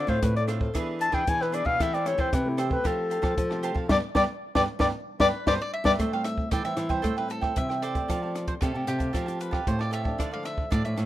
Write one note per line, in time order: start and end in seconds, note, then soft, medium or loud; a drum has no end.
0.00 0.20 D3 medium
0.00 0.18 C4 medium
0.00 0.19 F4 medium
0.00 0.19 A4 medium
0.00 0.11 D5 medium
0.07 0.19 A2 medium
0.07 0.18 D4 medium
0.07 0.18 A4 medium
0.07 0.18 C5 medium
0.07 0.25 C5 medium
0.07 0.18 F5 medium
0.07 kick medium
0.21 0.72 A2 medium
0.21 0.67 A2 loud
0.21 0.38 C4 medium
0.21 0.38 F4 medium
0.21 0.38 A4 medium
0.21 0.36 B4 medium
0.21 kick medium
0.21 cross-stick medium
0.21 closed hi-hat medium
0.36 0.44 D5 medium
0.36 closed hi-hat soft
0.47 0.70 C4 medium
0.47 0.60 D4 medium
0.47 0.70 F4 medium
0.47 0.70 A4 medium
0.47 0.60 A4 medium
0.47 0.60 C5 medium
0.47 0.59 F5 medium
0.47 cross-stick medium
0.47 closed hi-hat soft
0.60 0.74 A4 soft
0.60 0.73 C5 soft
0.60 0.73 F5 soft
0.60 kick medium
0.74 1.25 E3 medium
0.74 1.09 E3 loud
0.74 1.23 B3 medium
0.74 0.98 D4 medium
0.74 1.23 D4 medium
0.74 0.99 G#4 medium
0.74 1.23 G#4 medium
0.74 0.99 B4 medium
0.74 1.00 E5 medium
0.74 kick medium
0.74 cross-stick medium
0.74 closed hi-hat medium
0.99 1.11 D4 medium
0.99 1.11 G#4 soft
0.99 1.11 B4 medium
0.99 1.12 E5 medium
0.99 1.15 A5 loud
0.99 closed hi-hat medium
1.12 1.24 E3 medium
1.12 1.22 D4 medium
1.12 1.22 G#4 medium
1.12 1.23 B4 medium
1.12 1.23 E5 medium
1.12 1.30 G5 medium
1.12 kick medium
1.12 cross-stick medium
1.27 1.77 B2 medium
1.27 1.61 E3 loud
1.27 1.49 B3 medium
1.27 1.50 D4 soft
1.27 1.50 G#4 medium
1.27 1.43 G#5 loud
1.27 kick medium
1.27 closed hi-hat medium
1.40 1.52 G#4 soft
1.40 1.52 B4 soft
1.40 1.56 B4 medium
1.40 1.52 E5 soft
1.40 cross-stick medium
1.52 1.77 B3 medium
1.52 1.65 D4 medium
1.52 1.78 D4 soft
1.52 1.65 G#4 medium
1.52 1.78 G#4 medium
1.52 1.65 B4 medium
1.52 1.67 D5 medium
1.52 1.64 E5 medium
1.52 closed hi-hat medium
1.65 1.77 B2 medium
1.65 1.79 G#4 soft
1.65 1.79 B4 soft
1.65 1.78 E5 soft
1.65 1.83 F5 loud
1.65 kick medium
1.79 2.30 E3 medium
1.79 2.13 E3 loud
1.79 1.95 A3 medium
1.79 1.95 C4 medium
1.79 1.96 G4 medium
1.79 1.92 A4 medium
1.79 1.92 C5 medium
1.79 1.92 E5 medium
1.79 1.96 E5 medium
1.79 1.92 G5 medium
1.79 kick medium
1.79 cross-stick medium
1.79 closed hi-hat medium
1.93 2.05 C5 soft
1.93 2.08 D5 medium
1.93 2.06 E5 soft
1.93 2.05 G5 medium
1.93 closed hi-hat soft
2.05 2.30 A3 medium
2.05 2.30 C4 medium
2.05 2.30 G4 medium
2.05 2.17 A4 soft
2.05 2.18 C5 medium
2.05 2.22 C#5 medium
2.05 2.18 E5 medium
2.05 2.19 G5 medium
2.05 cross-stick medium
2.05 closed hi-hat soft
2.18 2.29 E3 medium
2.18 2.28 A4 medium
2.18 2.28 C5 medium
2.18 2.36 C5 medium
2.18 2.28 E5 medium
2.18 2.29 G5 medium
2.18 kick medium
2.32 2.77 C3 loud
2.32 2.82 E3 medium
2.32 2.50 B4 medium
2.32 kick medium
2.32 cross-stick medium
2.32 closed hi-hat medium
2.45 2.67 A3 medium
2.45 2.67 C4 medium
2.45 2.61 E4 medium
2.45 2.68 G4 medium
2.57 2.74 G4 medium
2.57 2.70 A4 medium
2.57 2.70 C5 medium
2.57 2.70 E5 medium
2.57 2.69 G5 medium
2.57 cross-stick medium
2.57 closed hi-hat medium
2.70 3.19 A3 medium
2.70 3.19 C4 medium
2.70 3.19 G4 medium
2.70 2.88 B4 medium
2.70 2.83 C5 soft
2.70 2.83 E5 soft
2.70 2.83 G5 soft
2.70 kick medium
2.83 3.34 F3 medium
2.83 3.18 F3 medium
2.83 3.09 G4 medium
2.83 3.90 A4 medium
2.83 3.09 C5 medium
2.83 3.10 F5 medium
2.83 3.10 A5 medium
2.83 kick medium
2.83 cross-stick medium
2.83 closed hi-hat medium
3.10 3.21 G4 soft
3.10 3.21 C5 soft
3.10 3.21 F5 soft
3.10 3.22 A5 soft
3.10 closed hi-hat soft
3.22 3.34 F3 medium
3.22 3.45 A3 medium
3.22 3.45 C4 medium
3.22 3.32 G4 medium
3.22 3.45 G4 medium
3.22 3.32 C5 medium
3.22 3.32 F5 medium
3.22 3.32 A5 medium
3.22 kick medium
3.22 cross-stick medium
3.22 closed hi-hat soft
3.37 3.87 C3 medium
3.37 3.71 F3 medium
3.37 kick medium
3.37 closed hi-hat medium
3.50 3.85 A3 medium
3.50 3.86 C4 medium
3.50 3.86 G4 medium
3.50 3.62 C5 soft
3.50 3.63 F5 soft
3.50 3.62 A5 medium
3.50 cross-stick medium
3.63 3.75 G4 medium
3.63 3.75 C5 medium
3.63 3.75 F5 medium
3.63 3.74 A5 medium
3.63 closed hi-hat soft
3.74 3.86 F3 medium
3.74 3.89 C5 soft
3.74 3.88 F5 soft
3.74 3.88 A5 soft
3.74 kick medium
3.88 3.99 G2 loud
3.88 3.97 G3 loud
3.88 3.97 B3 medium
3.88 3.97 D4 loud
3.88 3.98 G4 medium
3.88 3.98 B4 medium
3.88 3.98 D5 medium
3.88 3.97 D5 loud
3.88 kick medium
3.88 snare medium
4.15 4.25 G2 medium
4.15 4.24 G3 medium
4.15 4.24 B3 medium
4.15 4.24 D4 medium
4.15 4.24 G4 medium
4.15 4.23 B4 loud
4.15 4.24 D5 medium
4.15 4.22 D5 medium
4.15 kick medium
4.15 snare medium
4.55 4.65 G2 medium
4.55 4.64 G3 loud
4.55 4.64 B3 loud
4.55 4.64 D4 loud
4.55 4.63 G4 medium
4.55 4.63 B4 loud
4.55 4.64 D5 loud
4.55 4.62 D5 medium
4.55 kick medium
4.55 snare medium
4.79 4.90 G2 loud
4.79 4.89 G3 loud
4.79 4.89 B3 loud
4.79 4.89 D4 loud
4.79 4.89 G4 medium
4.79 4.89 B4 medium
4.79 4.89 D5 medium
4.79 4.87 D5 medium
4.79 kick medium
4.79 snare medium
5.19 5.30 G2 loud
5.19 5.28 G3 medium
5.19 5.28 B3 medium
5.19 5.28 D4 loud
5.19 5.29 G4 medium
5.19 5.45 B4 medium
5.19 5.29 B4 medium
5.19 5.29 D5 medium
5.19 5.27 D5 loud
5.19 kick medium
5.19 snare medium
5.46 5.57 G2 loud
5.46 5.55 G3 medium
5.46 5.55 B3 medium
5.46 5.54 D4 loud
5.46 5.55 G4 medium
5.46 5.55 B4 medium
5.46 5.59 C5 loud
5.46 5.54 D5 loud
5.46 5.56 D5 medium
5.46 kick medium
5.46 snare medium
5.62 5.73 D5 loud
5.74 6.13 E5 loud
5.84 5.95 G2 loud
5.84 5.93 G3 loud
5.84 5.93 B3 loud
5.84 5.93 D4 medium
5.84 5.94 G4 medium
5.84 5.94 B4 loud
5.84 5.94 D5 medium
5.84 5.92 D5 loud
5.84 kick medium
5.84 snare medium
5.98 6.49 A2 medium
5.98 6.08 G3 medium
5.98 6.44 A3 loud
5.98 6.08 C4 medium
5.98 6.08 E4 medium
5.98 6.11 A4 medium
5.98 6.11 C5 medium
5.98 6.12 E5 medium
5.98 6.12 G5 medium
5.98 kick medium
5.98 cross-stick medium
5.98 closed hi-hat medium
6.12 6.47 G3 medium
6.12 6.48 C4 medium
6.12 6.48 E4 medium
6.12 6.25 C5 soft
6.12 6.25 E5 soft
6.12 6.24 F5 medium
6.12 6.25 G5 soft
6.24 6.49 E5 loud
6.24 muted cavaquinho stroke soft
6.24 cross-stick medium
6.24 closed hi-hat soft
6.38 kick medium
6.51 7.02 E3 medium
6.51 6.63 E3 medium
6.51 6.87 G3 medium
6.51 6.87 C4 medium
6.51 6.87 E4 medium
6.51 6.63 A4 medium
6.51 6.64 C5 medium
6.51 6.64 D5 medium
6.51 6.64 E5 medium
6.51 6.63 G5 medium
6.51 kick medium
6.51 cross-stick medium
6.51 closed hi-hat medium
6.64 6.76 E3 medium
6.64 6.76 C5 soft
6.64 6.92 E5 medium
6.64 6.76 E5 soft
6.64 6.77 G5 soft
6.64 closed hi-hat soft
6.76 7.00 E3 loud
6.76 6.89 A4 soft
6.76 6.89 C5 soft
6.76 6.89 E5 soft
6.76 6.88 G5 soft
6.76 cross-stick medium
6.76 closed hi-hat soft
6.89 7.13 G3 medium
6.89 7.13 C4 medium
6.89 7.13 E4 medium
6.89 7.17 C5 medium
6.89 7.02 C5 soft
6.89 7.02 E5 medium
6.89 7.02 G5 medium
6.89 kick medium
6.89 closed hi-hat soft
7.02 7.54 A2 medium
7.02 7.49 A3 medium
7.02 7.15 A4 medium
7.02 7.15 C5 medium
7.02 7.16 E5 medium
7.02 7.15 G5 medium
7.02 kick medium
7.02 cross-stick medium
7.02 closed hi-hat medium
7.17 7.53 G3 medium
7.17 7.53 C4 medium
7.17 7.53 E4 medium
7.17 7.30 B4 medium
7.17 7.27 C5 soft
7.17 7.28 E5 soft
7.17 7.28 G5 soft
7.28 7.55 A4 medium
7.28 muted cavaquinho stroke soft
7.28 closed hi-hat soft
7.41 7.69 C5 medium
7.41 7.68 E5 medium
7.41 7.68 G5 medium
7.41 kick medium
7.41 cross-stick medium
7.56 8.01 C3 medium
7.56 8.06 E3 medium
7.56 7.81 G3 soft
7.56 7.81 C4 medium
7.56 7.81 E4 medium
7.56 7.81 E5 medium
7.56 kick medium
7.56 closed hi-hat medium
7.69 7.82 C5 soft
7.69 7.82 E5 soft
7.69 7.81 G5 soft
7.69 cross-stick medium
7.82 7.95 A4 medium
7.82 7.95 C5 medium
7.82 8.47 D5 medium
7.82 7.95 E5 medium
7.82 7.94 G5 medium
7.82 closed hi-hat soft
7.94 8.17 A3 medium
7.94 8.17 C4 medium
7.94 8.18 G4 medium
7.94 8.09 C5 soft
7.94 8.08 E5 soft
7.94 8.08 G5 soft
7.94 kick medium
7.94 closed hi-hat soft
8.08 8.59 F3 medium
8.08 8.54 F3 loud
8.08 8.21 G4 medium
8.08 8.21 A4 medium
8.08 8.21 F5 medium
8.08 8.21 A5 medium
8.08 kick medium
8.08 cross-stick medium
8.08 closed hi-hat medium
8.22 8.58 A3 medium
8.22 8.58 C4 medium
8.22 8.34 G4 soft
8.22 8.58 G4 medium
8.22 8.34 F5 soft
8.22 8.34 A5 soft
8.35 muted cavaquinho stroke soft
8.35 cross-stick medium
8.35 closed hi-hat soft
8.48 8.53 C5 medium
8.48 kick medium
8.48 closed hi-hat soft
8.61 9.12 C3 medium
8.61 8.73 C3 medium
8.61 8.97 A3 medium
8.61 8.97 C4 medium
8.61 8.74 G4 medium
8.61 8.97 G4 medium
8.61 8.86 A4 medium
8.61 8.74 A4 medium
8.61 8.74 F5 medium
8.61 8.73 A5 medium
8.61 kick loud
8.61 cross-stick medium
8.61 closed hi-hat medium
8.74 8.86 C3 medium
8.74 8.86 G4 soft
8.74 8.87 F5 soft
8.74 8.87 A5 soft
8.87 9.10 C3 medium
8.87 8.99 G4 soft
8.87 9.42 G4 medium
8.87 8.99 A4 soft
8.87 8.98 F5 soft
8.87 8.97 A5 soft
8.87 cross-stick medium
8.87 closed hi-hat medium
8.99 9.23 A3 medium
8.99 9.23 C4 medium
8.99 9.12 G4 medium
8.99 9.23 G4 medium
8.99 9.12 F5 medium
8.99 9.12 A5 medium
8.99 kick medium
8.99 closed hi-hat soft
9.13 9.64 F3 medium
9.13 9.59 F3 medium
9.13 9.26 G4 medium
9.13 9.26 A4 medium
9.13 9.26 F5 medium
9.13 9.25 A5 medium
9.13 kick medium
9.13 cross-stick medium
9.13 closed hi-hat medium
9.26 9.63 A3 medium
9.26 9.63 C4 medium
9.26 9.39 G4 soft
9.26 9.63 G4 medium
9.26 9.39 F5 soft
9.26 9.39 A5 soft
9.26 closed hi-hat soft
9.39 9.65 B4 medium
9.39 muted cavaquinho stroke soft
9.39 closed hi-hat soft
9.51 9.78 G4 medium
9.51 9.78 F5 medium
9.51 9.78 A5 medium
9.51 kick medium
9.51 cross-stick medium
9.67 10.12 A2 medium
9.67 10.17 C3 medium
9.67 10.02 A3 medium
9.67 10.02 C4 medium
9.67 10.02 G4 medium
9.67 9.79 C5 medium
9.67 kick medium
9.67 closed hi-hat medium
9.79 9.91 G4 soft
9.79 9.92 D5 medium
9.79 9.91 F5 soft
9.79 9.92 A5 soft
9.79 cross-stick medium
9.91 10.05 G4 medium
9.91 10.04 A4 medium
9.91 10.30 E5 medium
9.91 10.04 F5 medium
9.91 10.03 A5 medium
9.91 closed hi-hat soft
10.04 10.28 F3 medium
10.04 10.28 A3 medium
10.04 10.28 D4 medium
10.04 10.18 G4 soft
10.04 10.18 F5 soft
10.04 10.17 A5 soft
10.04 kick medium
10.18 10.64 D3 medium
10.18 10.70 D3 medium
10.18 10.31 D4 medium
10.18 10.31 A4 medium
10.18 10.32 D5 medium
10.18 10.30 F5 medium
10.18 kick medium
10.18 cross-stick medium
10.18 closed hi-hat medium
10.31 10.68 F3 medium
10.31 10.69 A3 medium
10.31 10.69 D4 medium
10.31 10.43 A4 soft
10.31 10.43 D5 soft
10.31 10.43 F5 medium
10.31 10.45 F5 medium
10.43 10.72 E5 loud
10.43 muted cavaquinho stroke soft
10.43 cross-stick medium
10.43 closed hi-hat soft
10.58 kick medium
10.70 10.83 A2 medium
10.70 11.06 A2 medium
10.70 11.06 F3 medium
10.70 11.06 A3 medium
10.70 10.83 D4 medium
10.70 11.06 D4 medium
10.70 10.83 A4 medium
10.70 10.84 D5 medium
10.70 10.83 F5 medium
10.70 kick loud
10.70 cross-stick medium
10.70 closed hi-hat medium
10.85 10.96 A2 medium
10.85 10.96 A4 soft
10.85 10.97 D5 soft
10.85 11.06 E5 medium
10.85 closed hi-hat soft
10.96 11.06 A2 loud
10.96 11.06 D4 soft
10.96 11.06 A4 soft
10.96 11.06 D5 soft
10.96 11.06 F5 medium
10.96 cross-stick medium
10.96 closed hi-hat soft